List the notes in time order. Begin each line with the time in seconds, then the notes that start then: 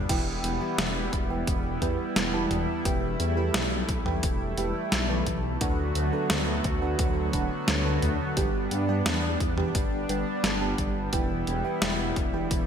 Already playing: G3
0.09 E1 E3 B3 E4 G4 B4 G5, kick, closed hi-hat, crash
0.43 E1, closed hi-hat
0.61 E3 E4 G4 B4 G5
0.78 E1, snare, closed hi-hat
1.13 E1, kick, closed hi-hat
1.30 E3 E4 G4 B4 G5
1.47 E1, kick, closed hi-hat
1.82 E2 E3 E4 G4 B4 G5, kick, closed hi-hat
2.16 E1, snare, closed hi-hat
2.34 E3 E4 G4 B4 A5
2.51 E1, closed hi-hat, mid tom
2.85 E1 E3 A3 E4 G4 B4 G5, kick, closed hi-hat
3.20 E2, closed hi-hat
3.37 E3 E4 G4 B4 G5
3.54 B1, snare, closed hi-hat
3.89 B1, kick, closed hi-hat
4.06 E3 E4 G4 B4 G5, mid tom
4.23 E1, kick, closed hi-hat
4.58 E1 E3 E4 G4 B4 G5, closed hi-hat
4.92 B1, snare, closed hi-hat
5.09 E3 E4 G4 B4 A5
5.27 B1, kick, closed hi-hat
5.61 D2 D3 F#3 B3 D4 F#4 A4 B4 F#5, kick, closed hi-hat
5.95 D2, closed hi-hat
6.13 D3 D4 A4 B4 F#5
6.30 D2, snare, closed hi-hat
6.64 D2, kick, closed hi-hat
6.82 D3 D4 A4 B4 F#5
6.99 D2, kick, closed hi-hat
7.33 D1 D3 D4 A4 B4 F#5, kick, closed hi-hat
7.68 D2, snare, closed hi-hat
7.85 D3 D4 A4 B4 A5
8.02 D2, closed hi-hat, mid tom
8.37 G1 G3 D4 G4 B4 G5, kick, closed hi-hat
8.71 G2, closed hi-hat
8.89 G3 D4 G4 B4 G5
9.06 E2, snare, closed hi-hat
9.40 E2, kick, closed hi-hat
9.58 G3 D4 G4 B4 G5, mid tom
9.75 G1, kick, closed hi-hat
10.09 G1 G3 D4 G4 B4 G5, closed hi-hat
10.44 G1, snare, closed hi-hat
10.61 G3 D4 G4 B4 A5
10.78 G1, kick, closed hi-hat
11.13 E1 E3 B3 E4 G4 B4 G5, kick, closed hi-hat
11.47 E1, closed hi-hat
11.65 E3 E4 G4 B4 G5
11.82 E1, snare, closed hi-hat
12.16 E1, kick, closed hi-hat
12.34 E3 E4 G4 B4 G5
12.51 E1, kick, closed hi-hat